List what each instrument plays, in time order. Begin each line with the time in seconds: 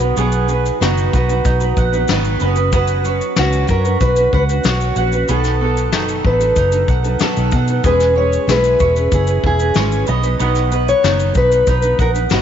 Already playing: fingered electric bass B1, mandolin B3, steel-string acoustic guitar F#4
0.00 steel-string acoustic guitar F#3 B3 D#4 B4, shaker
0.16 fingered electric bass B1, steel-string acoustic guitar B2 D#3 F#3 B3 D#4 G#4 B4, mandolin B3 F#5, shaker
0.32 shaker
0.48 steel-string acoustic guitar F#3 B3 D#4 B4, mandolin B4, shaker
0.66 shaker
0.80 fingered electric bass F#1, steel-string acoustic guitar B2 D#3 F#3 B3 D#4 F#4 B4, mandolin D#4, snare, shaker
0.98 shaker
1.12 fingered electric bass B1, steel-string acoustic guitar F#3 B3 D#4 F#4 B4, mandolin B4, kick, shaker
1.28 steel-string acoustic guitar F#3 B3 D#4 B4, shaker
1.45 fingered electric bass B1, mandolin D#4, kick, shaker
1.60 steel-string acoustic guitar F#3 B3 D#4 B4, shaker
1.77 fingered electric bass A#1, mandolin F#5, kick, shaker
1.92 steel-string acoustic guitar F#3 B3 D#4 B4, shaker
2.08 fingered electric bass G#1, steel-string acoustic guitar B2 D#3 F#3 B3 D#4 B4, mandolin B4, snare, shaker
2.25 shaker
2.39 fingered electric bass F#1, steel-string acoustic guitar F#3 C#4 F#4 B4, mandolin B3, shaker
2.55 steel-string acoustic guitar C#4 F#4 B4, shaker
2.71 steel-string acoustic guitar F#3 C#4 F#4 B4, mandolin B3 F#5, kick, shaker
2.87 shaker
3.03 steel-string acoustic guitar F#3 C#4 F#4 B4, mandolin C#5, shaker
3.21 shaker
3.36 fingered electric bass C#2, steel-string acoustic guitar F#3 C#4 F#4 B4, mandolin F#4, snare, shaker
3.53 shaker
3.68 fingered electric bass F#2, steel-string acoustic guitar F#3 C#4 F#4 A#4 B4, mandolin C#5, kick, shaker
3.84 steel-string acoustic guitar C#4 F#4 B4, shaker
4.01 fingered electric bass B1, mandolin F#4, steel-string acoustic guitar B4, kick, shaker
4.16 steel-string acoustic guitar C#4 F#4 B4, shaker
4.33 fingered electric bass C#2, steel-string acoustic guitar B4, mandolin F#5, kick
4.49 steel-string acoustic guitar C#4 F#4 B4, shaker
4.64 fingered electric bass B1, steel-string acoustic guitar F#3 C#4 F#4 B4, mandolin C#5, snare, shaker
4.81 shaker
4.96 fingered electric bass A#1, steel-string acoustic guitar F#3 C#4 F#4 B4, mandolin F#5, shaker
5.12 steel-string acoustic guitar C#4 F#4 B4, shaker
5.28 fingered electric bass B1, steel-string acoustic guitar B2 D#3 F#3 B3 D#4 A4, mandolin B3 F#5, shaker
5.44 snare, shaker
5.60 steel-string acoustic guitar F#3 B3 D#4 A4, mandolin A4
5.77 shaker
5.92 fingered electric bass F#1, steel-string acoustic guitar B2 D#3 F#3 B3 D#4 A4, mandolin D#4, snare, shaker
6.08 shaker
6.23 fingered electric bass A1, steel-string acoustic guitar F#3 B3 D#4 A4 B4, mandolin A4, kick
6.39 steel-string acoustic guitar F#3 B3 D#4 A4, shaker
6.56 fingered electric bass F#1, mandolin D#4, kick, shaker
6.71 steel-string acoustic guitar F#3 B3 D#4 A4, shaker
6.88 fingered electric bass B1, mandolin F#5, kick, shaker
7.03 steel-string acoustic guitar F#3 B3 D#4 A4, shaker
7.19 steel-string acoustic guitar B2 D#3 F#3 B3 D#4 A4, mandolin A4, muted fingered electric bass stroke, snare, shaker
7.37 fingered electric bass B1, shaker
7.51 fingered electric bass B2, steel-string acoustic guitar F#3 B3 D#4 A4, mandolin F#5, kick, shaker
7.67 steel-string acoustic guitar F#3 B3 D#4 A4, shaker
7.84 fingered electric bass E1, steel-string acoustic guitar E3 G#3 C#4 G#4 B4, mandolin B3 G#5, kick, shaker
8.00 snare, shaker
8.15 steel-string acoustic guitar G#3 C#4 G#4 B4 C#5, mandolin C#5
8.33 shaker
8.47 fingered electric bass B1, steel-string acoustic guitar E3 G#3 C#4 G#4 B4, mandolin E4, snare, shaker
8.51 steel-string acoustic guitar B4
8.64 shaker
8.79 fingered electric bass E1, steel-string acoustic guitar G#3 C#4 G#4 B4, mandolin C#5, kick, shaker
8.94 steel-string acoustic guitar C#4 G#4 B4, shaker
9.11 fingered electric bass F#1, mandolin E4, steel-string acoustic guitar G#4, kick, shaker
9.26 steel-string acoustic guitar C#4 G#4 B4, shaker
9.44 fingered electric bass E1, steel-string acoustic guitar G#4, mandolin G#5, kick
9.58 steel-string acoustic guitar C#4 G#4 B4, shaker
9.74 fingered electric bass G#1, steel-string acoustic guitar E3 G#3 C#4 G#4 B4, mandolin C#5, snare, shaker
9.92 shaker
10.07 fingered electric bass B1, steel-string acoustic guitar F#3 B3 D#4 B4 D#5, mandolin B3, shaker
10.23 steel-string acoustic guitar F#3 B3 D#4 B4, shaker
10.38 fingered electric bass B1, steel-string acoustic guitar B2 D#3 F#3 B3 D#4 B4, mandolin B3 F#5, shaker
10.55 snare, shaker
10.70 steel-string acoustic guitar F#3 B3 D#4 B4, mandolin B4, shaker
10.88 steel-string acoustic guitar C#5, shaker
11.02 fingered electric bass F#1, steel-string acoustic guitar B2 D#3 F#3 B3 D#4 B4, mandolin D#4, snare, shaker
11.20 shaker
11.34 fingered electric bass B1, steel-string acoustic guitar F#3 B3 D#4 B4, kick, shaker
11.49 steel-string acoustic guitar F#3 B3 D#4 B4, shaker
11.67 fingered electric bass B1, mandolin D#4, steel-string acoustic guitar B4, kick, shaker
11.81 steel-string acoustic guitar F#3 B3 D#4 B4, shaker
11.99 fingered electric bass A#1, steel-string acoustic guitar A#4, mandolin F#5, kick, shaker
12.14 steel-string acoustic guitar F#3 B3 D#4 B4, shaker
12.30 fingered electric bass G#1, steel-string acoustic guitar B2 D#3 F#3 B3 D#4 F#4 B4, mandolin B4, snare, shaker